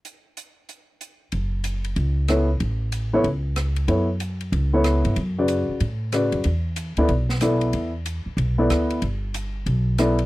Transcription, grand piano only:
X:1
M:4/4
L:1/8
Q:"Swing" 1/4=187
K:F#phr
V:1 name="Grand piano"
z8 | z6 [B,EAc] z | z3 [B,EAc] z4 | [B,EAc] z4 [B,EAc]3 |
z [C,FBd]3 z2 [C,FBd]2 | z3 [B,EAd] z2 [B,EAd]2- | [B,EAd] z4 [B,EAd]3 | z6 [B,EAd] z |]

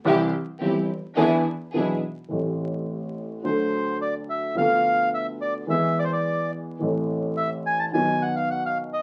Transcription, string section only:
X:1
M:4/4
L:1/8
Q:1/4=106
K:Ephr
V:1 name="String section"
[CEG] z [CEG] z [DE^G] z [DEG] z | [K:Am] z8 | z8 | z8 |]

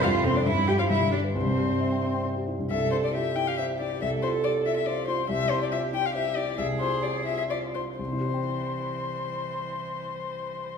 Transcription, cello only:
X:1
M:3/4
L:1/16
Q:1/4=134
K:C
V:1 name="Cello"
F2 C D E2 G F E2 D2 | C8 z4 | A4 G8 | A8 F4 |
G12 | _A8 F2 z2 | E,12- | E,12 |]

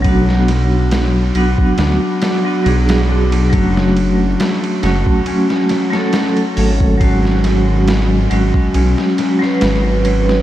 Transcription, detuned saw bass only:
X:1
M:4/4
L:1/8
Q:"Swing 16ths" 1/4=69
K:F#m
V:1 name="Detuned saw bass" clef=bass
B,,,3 B,,, D,, z B,,,2 | F,,,2 z F,,, z3 G,,,- | G,,,3 G,,, B,,, z G,,,2 |]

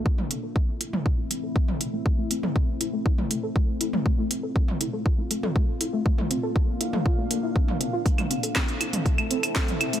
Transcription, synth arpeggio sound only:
X:1
M:4/4
L:1/16
Q:1/4=120
K:Aphr
V:1 name="Synth arpeggio sound"
A, A, C A z2 E A, E A, A, A A, z E A, | A, A, C A z2 E A, E A, A, A A, z E A, | A, A, C A z2 E A, F A, A, A A, z E A, | A, A, C A z2 E A, F A, B, E C z C F |
A, A, C A z2 E A, A, A, C A z2 E A, |]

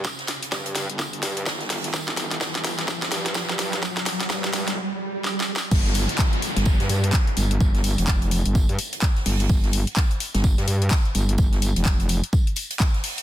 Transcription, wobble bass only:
X:1
M:4/4
L:1/16
Q:"Swing 16ths" 1/4=127
K:Fdor
V:1 name="Wobble bass" clef=bass
z4 G,,3 G,,,3 G,,2 G,,,2 G,,,2 | G,,,4 G,,, G,,,2 G,,,3 G,,2 G,,4 | z4 G,,3 G,,, z8 | G,,,3 z4 G,,,2 G,, G,,2 z2 G,,,2 |
G,,,3 F,,,4 G,,,2 G,, z4 G,,,2 | G,,,3 z4 G,,,2 G,, G,,2 z2 G,,,2 | G,,,3 F,,,4 z8 z |]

